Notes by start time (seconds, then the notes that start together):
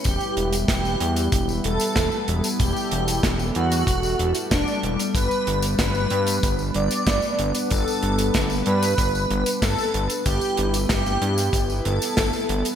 Already playing: E4 B4
0.04 E1 G3 B3 G4, kick, closed hi-hat, tambourine
0.20 tambourine
0.37 E1, closed hi-hat
0.53 closed hi-hat, tambourine
0.68 E1 G4, kick, snare, closed hi-hat, tambourine
0.85 tambourine
1.00 E2, closed hi-hat
1.16 closed hi-hat, tambourine
1.32 E1, kick, closed hi-hat, tambourine
1.49 tambourine
1.64 E1 A4, closed hi-hat
1.80 closed hi-hat, tambourine
1.96 E1, kick, snare, closed hi-hat, tambourine
2.12 tambourine
2.28 E1, closed hi-hat
2.44 closed hi-hat, tambourine
2.60 E1 G4 A4, kick, closed hi-hat, tambourine
2.76 tambourine
2.91 E1, closed hi-hat
3.08 closed hi-hat, tambourine
3.23 E1, kick, snare, closed hi-hat, tambourine
3.39 tambourine
3.55 E2 F#4, closed hi-hat
3.72 closed hi-hat, tambourine
3.87 E1, kick, closed hi-hat, tambourine
4.03 tambourine
4.19 E1, closed hi-hat
4.35 closed hi-hat, tambourine
4.51 E1 D4, kick, snare, closed hi-hat, tambourine
4.68 tambourine
4.83 E1, closed hi-hat
4.99 closed hi-hat, tambourine
5.15 G1 B3 D4 B4, kick, closed hi-hat, tambourine
5.31 tambourine
5.47 G1, closed hi-hat
5.62 closed hi-hat, tambourine
5.79 G1 B4, kick, snare, closed hi-hat, tambourine
5.95 tambourine
6.10 G2, closed hi-hat
6.27 closed hi-hat, tambourine
6.43 G1, kick, closed hi-hat, tambourine
6.59 tambourine
6.74 G1 D5, closed hi-hat
6.91 closed hi-hat, tambourine
7.07 G1, kick, snare, closed hi-hat, tambourine
7.22 tambourine
7.39 G1, closed hi-hat
7.55 closed hi-hat, tambourine
7.71 G1 A4, kick, closed hi-hat, tambourine
7.88 tambourine
8.03 G1, closed hi-hat
8.19 closed hi-hat, tambourine
8.34 G1, kick, snare, closed hi-hat, tambourine
8.50 tambourine
8.66 G2 B4, closed hi-hat
8.83 closed hi-hat, tambourine
8.98 G1, kick, closed hi-hat, tambourine
9.15 tambourine
9.31 G1, closed hi-hat
9.46 closed hi-hat, tambourine
9.62 G1 A4, kick, snare, closed hi-hat, tambourine
9.78 tambourine
9.94 G1, closed hi-hat
10.10 closed hi-hat, tambourine
10.26 G1 B3 E4 G4, kick, closed hi-hat, tambourine
10.41 tambourine
10.57 G1, closed hi-hat
10.74 closed hi-hat, tambourine
10.89 G1 G4, kick, snare, closed hi-hat, tambourine
11.06 tambourine
11.22 G2, closed hi-hat
11.38 closed hi-hat, tambourine
11.53 G1, kick, closed hi-hat, tambourine
11.70 tambourine
11.85 G1 A4, closed hi-hat
12.02 closed hi-hat, tambourine
12.17 G1, kick, snare, closed hi-hat, tambourine
12.33 tambourine
12.49 G1, closed hi-hat
12.65 closed hi-hat, tambourine